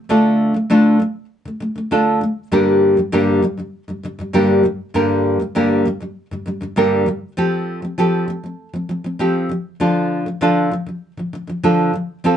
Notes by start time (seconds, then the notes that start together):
0.09 D3 A3 D4 F4 A4
0.54 D3 A3
0.70 D3 A3 D4 F4 A4
1.00 D3 A3
1.45 D3 A3
1.60 D3 A3
1.76 D3 A3
1.91 D3 A3 D4 F4 A4
2.21 D3 A3
2.52 G2 D3 G3 A#3 G4 A#4
2.97 G2 D3 G3
3.12 G2 D3 G3 A#3 G4 A#4
3.42 G2 D3 G3
3.57 G2 D3 G3
3.88 G2 D3 G3
4.03 G2 D3 G3
4.19 G2 D3 G3
4.33 G2 D3 G3 A#3 G4 A#4
4.63 G2 D3
4.94 G2 D3 G3 A#3 G4 A#4
5.40 G2 G3
5.55 G2 D3 G3 A#3 G4 A#4
5.85 G2 D3 G3
6.00 G2 D3 G3
6.31 G2 D3 G3
6.46 G2 D3 G3
6.61 G2 D3 G3
6.76 G2 D3 G3 A#3 G4 A#4
7.06 G2 D3 G3
7.37 F3 C4 G4 A4
7.82 F3 C4
7.98 F3 C4 G4 A4
8.28 F3 C4
8.44 F3 C4
8.74 F3 C4
8.89 F3 C4
9.04 F3 C4
9.19 F3 C4 G4 A4
9.49 D3 F3
9.80 D3 F3 D4 F4 A4
10.26 D3 F3
10.41 D3 F3 D4 F4 A4
10.71 D3 F3
10.86 D3 F3
11.17 D3 F3
11.33 D3 F3
11.47 D3 F3
11.63 D3 F3 D4 F4 A4
11.94 D3 F3
12.24 F3 C4 F4 A4